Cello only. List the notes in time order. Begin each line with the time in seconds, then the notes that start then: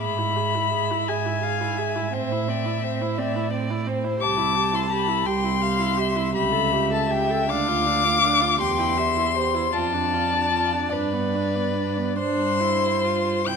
0.01 G#2
1.08 G#2
2.13 A2
3.17 A2
4.22 C2
5.26 C2
6.35 C#2
7.50 D2
8.60 E2
9.75 F2
10.92 G2
12.19 G2
13.47 C3